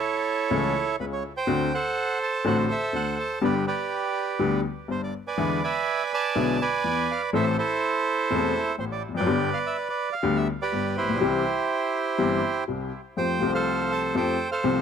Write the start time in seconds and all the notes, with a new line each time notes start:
Already playing: E4 A4 C#5
0.51 C#2 C#3 E3 A3 C#4 A4
1.00 C#2 C#3 B4
1.13 C#5
1.37 C5 G5
1.47 D2 D3 A3 C4 F#4
1.74 A4 C5 F#5
2.23 A5
2.44 A1 A2 D3 A3 C4 F#4 A4 C5 F#5
2.72 E5
2.93 D2 D3 F#5
3.19 A5
3.41 G1 G2 D3 G3 B3 G4 B4 D5
3.67 G4 B4 D5
4.39 D2 D3 G3 B3 G4
4.88 G1 G2 C5
5.04 D5
5.27 B4 D5 G#5
5.38 E2 D3 E3 G#3 B3 E4
5.64 B4 E5 G#5
6.06 B5
6.14 D5 A5
6.35 B1 B2 D3 G#3 B3 E4
6.62 B4 D5 G#5
6.84 E2 E3
7.11 F5
7.33 A1 A2 E3 A3 C4 A4 C5 E5
7.58 E4 A4 C5
8.30 E1 E2 E3 A3 C4 A4
8.78 A1 A2 C5
8.92 D5
9.09 E2
9.14 F2 B4 D5 G5
9.21 F#2
9.26 G1 G2 D3 G3 B3 G4
9.54 F5
9.66 E5
9.90 D5
10.13 F5
10.23 D2 D3 G3 B3 G4
10.37 E5
10.62 G4 B4 D5
10.72 G1 G2
10.97 E4 G4 C5
11.03 A1
11.09 A#1
11.16 B1
11.21 C2 C3 E3 G3 C4 G4
12.18 G1 G2 E3 G3 C4 G4
12.68 C2 C3
13.17 F2 F3 A3 C4 G4 C5 G5
13.40 C2 C3 F3 A3 C4 G4
13.54 A4 C5 F5
13.92 A5
14.14 F2 F3 A3 C4 G4 C5 G5
14.52 A4 C5 F5
14.64 C2 C3 F3 A3 C4 G4